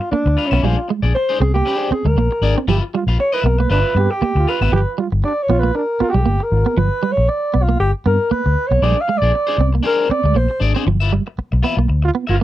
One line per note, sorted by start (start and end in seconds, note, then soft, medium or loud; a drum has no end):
0.00 0.11 F4 medium
0.00 muted clean electric guitar stroke soft
0.11 0.22 A#3 medium
0.11 0.48 D4 medium
0.11 muted fingered electric bass stroke soft
0.11 muted clean electric guitar stroke soft
0.26 0.35 D2 medium
0.26 muted clean electric guitar stroke soft
0.37 0.49 F4 medium
0.37 0.50 B4 medium
0.37 0.50 F5 medium
0.47 0.66 C#4 medium
0.51 0.61 B1 medium
0.51 0.60 B3 medium
0.51 0.62 F4 medium
0.51 0.62 B4 medium
0.51 0.61 E5 medium
0.63 0.75 A#1 loud
0.63 0.73 G3 medium
0.63 0.78 D4 medium
0.63 0.90 F4 medium
0.63 0.78 G#4 medium
0.63 0.76 C5 medium
0.77 muted clean electric guitar stroke soft
0.88 0.99 G#3 medium
0.88 muted clean electric guitar stroke soft
1.02 1.12 A#1 medium
1.02 1.13 D4 soft
1.02 1.13 G#4 soft
1.02 1.12 D5 soft
1.02 muted clean electric guitar stroke soft
1.14 1.39 C5 medium
1.14 muted clean electric guitar stroke soft
1.29 1.39 D4 medium
1.29 1.40 G#4 medium
1.29 1.40 C5 medium
1.40 1.61 C2 medium
1.40 1.50 C4 medium
1.40 1.54 G#4 medium
1.40 muted clean electric guitar stroke soft
1.54 1.62 A#3 medium
1.54 1.89 G4 medium
1.54 muted clean electric guitar stroke soft
1.66 1.90 D4 medium
1.66 1.90 G#4 medium
1.66 1.91 C5 medium
1.66 muted clean electric guitar stroke soft
1.91 2.01 C4 medium
1.91 2.08 G#4 medium
1.91 muted fingered electric bass stroke medium
1.91 muted clean electric guitar stroke soft
2.05 2.14 D2 medium
2.05 2.13 G#3 medium
2.05 2.57 A#4 medium
2.05 muted clean electric guitar stroke soft
2.16 2.28 A#1 medium
2.16 2.27 A#3 medium
2.16 muted clean electric guitar stroke medium
2.31 muted clean electric guitar stroke soft
2.42 2.53 G#1 medium
2.42 2.57 D4 medium
2.42 2.56 G#4 medium
2.42 2.56 D5 medium
2.56 2.65 C4 medium
2.56 muted clean electric guitar stroke soft
2.68 2.79 G1 loud
2.68 2.77 F3 medium
2.68 2.83 F4 medium
2.68 2.77 G4 medium
2.68 2.82 B4 medium
2.68 2.81 E5 medium
2.83 muted clean electric guitar stroke soft
2.94 3.03 G3 medium
2.94 3.03 F4 medium
2.94 muted clean electric guitar stroke soft
3.07 3.16 A#1 medium
3.07 3.18 F4 soft
3.07 3.18 B4 soft
3.07 3.17 F5 medium
3.07 muted clean electric guitar stroke soft
3.19 3.35 C#5 loud
3.19 muted clean electric guitar stroke soft
3.32 3.44 F4 medium
3.32 3.44 B4 medium
3.32 3.46 B4 medium
3.32 3.45 E5 medium
3.44 3.65 B1 medium
3.44 3.55 B3 medium
3.44 3.60 A#4 loud
3.44 muted clean electric guitar stroke soft
3.59 3.67 A#3 medium
3.59 3.70 B4 medium
3.59 muted clean electric guitar stroke medium
3.70 3.82 G1 loud
3.70 3.79 D4 medium
3.70 3.94 F4 medium
3.70 3.95 B4 medium
3.70 4.13 B4 loud
3.70 3.95 E5 medium
3.95 4.07 G2 medium
3.95 4.06 B3 medium
3.95 4.17 G4 loud
3.95 muted clean electric guitar stroke soft
4.11 4.51 G4 medium
4.11 muted clean electric guitar stroke soft
4.21 4.31 A#3 medium
4.21 muted clean electric guitar stroke soft
4.21 muted fingered electric bass stroke medium
4.35 4.45 D2 medium
4.35 4.57 F4 loud
4.35 muted clean electric guitar stroke soft
4.47 4.59 F4 medium
4.47 4.59 B4 medium
4.47 4.99 B4 medium
4.47 4.60 F5 medium
4.61 4.70 G#1 medium
4.61 4.69 B3 medium
4.61 4.72 F4 soft
4.61 4.71 B4 medium
4.61 4.71 E5 medium
4.72 4.84 G1 loud
4.72 4.82 F3 medium
4.72 4.81 G4 loud
4.98 5.07 G3 medium
4.98 5.07 F4 medium
5.12 5.21 G1 medium
5.12 muted clean electric guitar stroke soft
5.24 5.33 D4 medium
5.24 5.44 D5 medium
5.24 muted clean electric guitar stroke soft
5.42 5.61 C#5 medium
5.49 5.70 A#1 medium
5.49 5.58 B3 medium
5.49 5.70 F4 loud
5.59 5.77 B4 medium
5.63 5.71 A#3 medium
5.75 5.83 D4 medium
5.75 6.11 A#4 medium
5.75 muted clean electric guitar stroke soft
6.00 6.09 B3 medium
6.00 6.21 F4 loud
6.00 muted fingered electric bass stroke soft
6.09 6.45 G4 medium
6.14 6.24 B1 loud
6.14 6.22 G3 medium
6.26 6.37 G1 loud
6.26 6.35 A#3 medium
6.40 6.79 A#4 medium
6.40 muted clean electric guitar stroke soft
6.52 6.63 G#1 loud
6.66 6.73 B3 medium
6.77 6.89 G1 loud
6.77 6.86 F3 medium
6.77 7.14 B4 medium
7.03 7.12 G3 medium
7.12 7.30 C#5 loud
7.17 7.26 A#1 medium
7.17 muted clean electric guitar stroke soft
7.29 7.64 D5 medium
7.29 muted clean electric guitar stroke soft
7.54 7.75 B1 medium
7.54 7.63 B3 medium
7.62 7.79 F4 medium
7.69 7.76 A#3 medium
7.80 7.91 G1 loud
7.80 7.91 G4 medium
8.06 8.17 G2 medium
8.06 8.14 B3 medium
8.06 8.33 A#4 loud
8.31 8.40 A#3 medium
8.31 8.69 B4 medium
8.31 muted fingered electric bass stroke soft
8.46 8.54 D2 medium
8.46 muted clean electric guitar stroke soft
8.67 8.80 B1 loud
8.67 8.84 C#5 loud
8.72 8.78 B3 medium
8.82 8.93 A#1 loud
8.82 8.92 G3 medium
8.82 8.97 D4 medium
8.82 8.97 G#4 medium
8.82 8.96 C5 medium
8.82 9.03 D5 loud
8.97 muted clean electric guitar stroke medium
9.01 9.19 F5 loud
9.08 9.17 G#3 medium
9.08 muted clean electric guitar stroke soft
9.18 9.68 D5 loud
9.18 9.31 D5 medium
9.22 9.31 A#1 medium
9.22 9.32 D4 soft
9.22 9.31 G#4 medium
9.22 muted clean electric guitar stroke soft
9.33 muted clean electric guitar stroke soft
9.47 9.56 D4 medium
9.47 9.57 G#4 medium
9.47 9.57 C5 medium
9.57 9.79 C2 medium
9.57 9.69 C4 medium
9.57 muted clean electric guitar stroke soft
9.73 9.81 A#3 medium
9.73 muted clean electric guitar stroke soft
9.83 10.07 D4 medium
9.83 10.08 G#4 medium
9.83 10.12 A#4 loud
9.83 10.08 C5 medium
9.83 muted clean electric guitar stroke medium
10.09 10.20 C4 medium
10.09 10.38 D5 loud
10.09 muted clean electric guitar stroke soft
10.09 muted fingered electric bass stroke soft
10.23 10.33 D2 medium
10.23 10.32 G#3 medium
10.23 muted clean electric guitar stroke soft
10.34 10.46 A#1 medium
10.34 10.45 A#3 medium
10.34 10.62 C5 loud
10.34 muted clean electric guitar stroke soft
10.49 muted clean electric guitar stroke soft
10.60 10.72 G#1 loud
10.60 10.72 D4 medium
10.60 10.73 G#4 medium
10.60 10.73 D5 medium
10.74 10.83 C4 medium
10.74 10.85 D4 medium
10.74 10.85 G#4 medium
10.74 10.84 C5 medium
10.86 11.18 G1 medium
10.86 10.96 F3 medium
10.86 muted clean electric guitar stroke soft
11.00 11.11 F4 medium
11.00 11.12 B4 medium
11.00 11.12 E5 medium
11.13 11.21 G3 medium
11.13 muted clean electric guitar stroke soft
11.27 muted clean electric guitar stroke soft
11.38 muted fingered electric bass stroke soft
11.38 muted clean electric guitar stroke soft
11.52 11.61 B1 loud
11.52 muted clean electric guitar stroke soft
11.63 11.73 B3 medium
11.63 11.78 F4 medium
11.63 11.77 B4 medium
11.63 11.76 E5 medium
11.77 11.86 B1 loud
11.77 11.85 A#3 medium
11.77 muted clean electric guitar stroke soft
11.88 12.09 D2 loud
11.88 muted clean electric guitar stroke soft
12.02 12.11 F4 loud
12.02 muted clean electric guitar stroke medium
12.15 12.24 B3 medium
12.27 12.38 G1 medium
12.27 12.38 F4 medium
12.27 12.37 F4 loud
12.27 12.38 B4 medium
12.27 12.40 F5 medium
12.39 muted clean electric guitar stroke soft